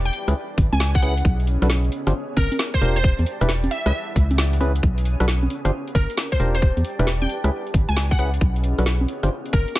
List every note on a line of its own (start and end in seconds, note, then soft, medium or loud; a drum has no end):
0.00 0.11 E1 loud
0.05 0.13 G5 medium
0.05 closed hi-hat soft
0.13 1.53 C#4 medium
0.13 open hi-hat loud
0.28 0.34 C#2 medium
0.28 0.34 C#4 medium
0.28 0.34 E4 medium
0.28 0.34 G#4 medium
0.28 0.34 B4 medium
0.28 cross-stick medium
0.28 closed hi-hat medium
0.58 0.70 G#1 loud
0.58 kick loud
0.58 open hi-hat loud
0.72 1.23 C#2 medium
0.72 0.92 G#5 loud
0.72 open hi-hat medium
0.72 high conga medium
0.80 snare loud
0.95 1.00 F#5 medium
0.95 kick loud
0.95 closed hi-hat medium
1.02 1.14 C#4 medium
1.02 1.14 E4 medium
1.02 1.14 G#4 medium
1.02 1.14 B4 medium
1.02 1.12 F#5 medium
1.02 open hi-hat loud
1.17 closed hi-hat medium
1.25 1.58 B1 loud
1.25 kick loud
1.40 closed hi-hat soft
1.47 open hi-hat loud
1.62 1.90 B1 loud
1.62 1.68 D4 loud
1.62 1.68 F#4 medium
1.62 1.68 A4 medium
1.62 1.68 B4 loud
1.62 cross-stick medium
1.62 closed hi-hat medium
1.70 snare loud
1.84 closed hi-hat soft
1.92 3.32 G4 medium
1.92 open hi-hat loud
2.07 2.13 G1 medium
2.07 2.13 D4 medium
2.07 2.13 F4 medium
2.07 2.13 G4 medium
2.07 2.13 C5 medium
2.07 cross-stick medium
2.07 closed hi-hat medium
2.37 2.49 G1 loud
2.37 2.51 A#4 medium
2.37 kick loud
2.37 cross-stick medium
2.37 open hi-hat loud
2.37 high conga medium
2.52 closed hi-hat medium
2.52 high conga medium
2.59 snare loud
2.74 2.93 C5 medium
2.74 kick medium
2.74 closed hi-hat medium
2.81 3.14 E1 loud
2.81 2.98 D4 medium
2.81 2.98 F4 medium
2.81 2.98 G4 medium
2.81 2.98 A#4 loud
2.81 open hi-hat loud
2.96 3.03 C5 medium
2.96 closed hi-hat medium
3.04 kick loud
3.19 3.25 E2 medium
3.19 closed hi-hat soft
3.26 open hi-hat loud
3.41 3.69 E1 loud
3.41 3.52 D4 medium
3.41 3.52 E4 medium
3.41 3.52 G4 medium
3.41 3.52 B4 loud
3.41 cross-stick medium
3.41 closed hi-hat medium
3.49 snare loud
3.64 closed hi-hat soft
3.64 high conga medium
3.71 5.11 C#4 medium
3.71 3.83 E5 loud
3.71 open hi-hat loud
3.86 3.92 C#2 medium
3.86 3.92 C#4 medium
3.86 3.92 E4 medium
3.86 3.92 G#4 medium
3.86 3.92 B4 medium
3.86 4.47 E5 medium
3.86 cross-stick medium
3.86 closed hi-hat medium
4.16 4.81 C#2 loud
4.16 kick loud
4.16 open hi-hat loud
4.31 open hi-hat medium
4.31 high conga medium
4.38 snare loud
4.53 closed hi-hat medium
4.61 4.72 C#4 medium
4.61 4.72 E4 medium
4.61 4.72 G#4 medium
4.61 4.72 B4 medium
4.61 open hi-hat loud
4.61 high conga medium
4.76 closed hi-hat medium
4.83 5.16 B1 loud
4.83 kick loud
4.98 closed hi-hat medium
5.05 open hi-hat loud
5.20 5.48 B1 loud
5.20 5.26 D4 medium
5.20 5.26 F#4 medium
5.20 5.26 A4 medium
5.20 5.26 B4 loud
5.20 cross-stick medium
5.20 closed hi-hat medium
5.28 snare loud
5.43 high conga medium
5.50 6.90 G4 medium
5.50 open hi-hat loud
5.65 5.71 G1 medium
5.65 5.71 D4 medium
5.65 5.71 F4 medium
5.65 5.71 G4 medium
5.65 5.71 C5 medium
5.65 cross-stick medium
5.65 closed hi-hat medium
5.88 closed hi-hat soft
5.95 6.07 G1 medium
5.95 6.09 A#4 medium
5.95 kick loud
5.95 cross-stick medium
5.95 open hi-hat loud
6.10 closed hi-hat medium
6.17 snare loud
6.32 6.52 C5 medium
6.32 kick medium
6.32 closed hi-hat medium
6.40 6.73 E1 medium
6.40 6.56 D4 medium
6.40 6.56 F4 medium
6.40 6.56 G4 medium
6.40 6.56 A#4 loud
6.40 open hi-hat loud
6.55 6.62 C5 medium
6.55 closed hi-hat medium
6.62 kick loud
6.77 6.83 E2 medium
6.77 closed hi-hat soft
6.85 open hi-hat loud
6.99 7.27 E1 loud
6.99 7.10 D4 medium
6.99 7.10 E4 medium
6.99 7.10 G4 medium
6.99 7.10 B4 loud
6.99 cross-stick medium
6.99 closed hi-hat medium
7.07 snare loud
7.22 7.29 G5 medium
7.22 high conga medium
7.29 8.70 C#4 medium
7.29 open hi-hat loud
7.44 7.50 C#2 medium
7.44 7.50 C#4 medium
7.44 7.50 E4 medium
7.44 7.50 G#4 medium
7.44 7.50 B4 medium
7.44 cross-stick medium
7.44 closed hi-hat medium
7.67 closed hi-hat soft
7.74 7.86 G#1 loud
7.74 kick loud
7.74 open hi-hat loud
7.89 8.39 C#2 medium
7.89 8.08 G#5 medium
7.89 open hi-hat medium
7.97 snare loud
8.11 8.16 F#5 medium
8.11 kick loud
8.11 closed hi-hat soft
8.19 8.30 C#4 medium
8.19 8.30 E4 medium
8.19 8.30 G#4 medium
8.19 8.30 B4 medium
8.19 8.28 F#5 medium
8.19 open hi-hat loud
8.34 closed hi-hat medium
8.41 8.74 B1 loud
8.41 kick loud
8.56 closed hi-hat medium
8.64 open hi-hat loud
8.78 9.06 B1 loud
8.78 8.84 D4 medium
8.78 8.84 F#4 medium
8.78 8.84 A4 medium
8.78 8.84 B4 loud
8.78 cross-stick medium
8.78 closed hi-hat medium
8.86 snare loud
9.01 high conga medium
9.08 9.79 G4 medium
9.08 open hi-hat loud
9.18 9.79 A5 medium
9.23 9.29 G1 medium
9.23 9.29 D4 medium
9.23 9.29 F4 medium
9.23 9.29 G4 medium
9.23 9.29 C5 medium
9.23 cross-stick medium
9.23 closed hi-hat medium
9.46 closed hi-hat soft
9.53 9.65 G1 loud
9.53 9.67 A#4 medium
9.53 kick loud
9.53 cross-stick medium
9.53 open hi-hat loud
9.68 closed hi-hat medium
9.76 snare loud